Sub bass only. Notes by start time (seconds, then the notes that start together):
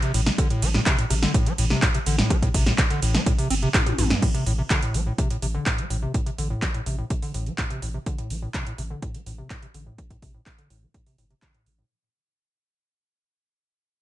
0.14 A1
0.62 A1
1.10 A1
1.58 A1
2.06 A1
2.54 A1
3.02 A1
3.50 G1
3.98 A1
4.46 A1
4.94 A1
5.42 A1
5.90 A1
6.38 A1
6.86 A1
7.34 A1
7.82 A1
8.30 A1
8.78 A1
9.26 A1
9.74 A1
10.22 A1
10.70 A1
11.18 G1
11.66 A1